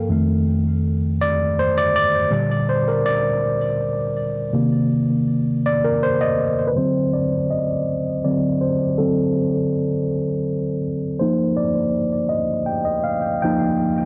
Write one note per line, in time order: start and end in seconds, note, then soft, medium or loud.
0.00 0.10 F5 medium
0.09 1.15 F2 medium
0.09 1.16 D#3 medium
0.09 1.16 A3 medium
1.21 1.58 D5 loud
1.59 1.77 C5 medium
1.77 1.95 D5 loud
1.96 2.71 D5 loud
2.30 4.48 A#2 medium
2.30 4.49 D3 soft
2.30 4.49 G3 medium
2.69 2.85 C5 medium
2.88 3.06 A#4 medium
3.06 3.75 D5 medium
4.53 6.71 C3 medium
4.53 6.71 D#3 soft
4.53 6.72 A#3 medium
5.66 5.82 D5 medium
5.85 6.01 A#4 medium
6.03 6.21 C5 medium
6.21 6.72 D#5 medium
6.67 6.75 B4 medium
6.76 7.25 D3 soft
6.76 7.25 F#3 soft
6.76 7.26 C4 medium
6.76 7.10 C5 medium
7.13 7.51 D5 medium
7.51 8.26 D#5 medium
8.24 8.57 D3 soft
8.24 8.57 F#3 soft
8.24 8.58 C4 soft
8.24 8.62 D5 medium
8.61 8.77 C5 medium
8.98 10.05 D3 medium
8.98 10.05 F#3 soft
8.98 10.06 C4 medium
8.98 10.79 A4 medium
11.19 11.69 F3 medium
11.19 11.69 A#3 soft
11.19 11.70 D#4 medium
11.19 11.57 C5 medium
11.57 12.33 D5 medium
12.29 12.68 D#5 medium
12.66 12.86 G5 loud
12.85 13.04 D#5 medium
13.04 13.42 F5 medium
13.42 14.05 F3 medium
13.42 14.05 A#3 soft
13.42 14.05 D#4 medium
13.42 14.05 G5 medium